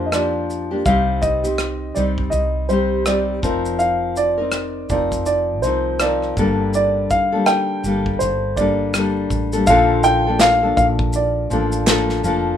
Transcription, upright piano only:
0.06 D#5
0.13 D5
0.86 F5
1.22 D#5
1.95 D5
2.30 D#5
2.69 C5
3.06 D5
3.79 F5
4.17 D5
4.90 D5
5.26 D5
5.62 C5
6.00 D5
6.75 D5
7.11 F5
7.46 G5
8.19 C5
8.56 D5
9.67 F5
10.04 G5
10.41 F5
10.77 F5
11.15 D5

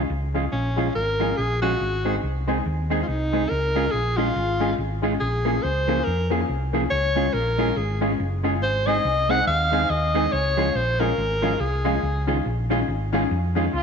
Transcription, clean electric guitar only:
0.35 F3 G#3 C#4 F4
0.77 F3 G#3 C#4 F4
1.20 F3 G#3 C#4 F4
1.62 F3 G#3 C#4 F4
2.05 G#3 C4 D#4 G#4
2.48 G#3 C4 D#4 G#4
2.90 G#3 C4 D#4 G#4
3.33 G#3 C4 D#4 G#4
3.75 G#3 C#4 F4 G#4
4.18 G#3 C#4 F4 G#4
4.60 G#3 C#4 F4 G#4
5.03 G#3 C#4 F4 G#4
5.45 F3 A#3 C#4 G#4
5.87 F3 A#3 C#4 G#4
6.30 F3 A#3 C#4 G#4
6.73 F3 A#3 C#4 G#4
7.16 G#3 C#4 F4 G#4
7.58 G#3 C#4 F4 G#4
8.01 G#3 C#4 F4 G#4
8.44 G#3 C#4 F4 G#4
8.87 G#3 C4 D#4 G#4
9.29 G#3 C4 D#4 G#4
9.72 G#3 C4 D#4 G#4
10.14 G#3 C4 D#4 G#4
10.57 F3 G#3 C#4 F4
10.99 F3 G#3 C#4 F4
11.42 F3 G#3 C#4 F4
11.85 F3 G#3 C#4 F4
12.27 D#3 G#3 C#4 F4
12.70 D#3 G#3 C#4 F4
13.13 D#3 G#3 C#4 F4
13.56 D#3 G#3 C#4 F4

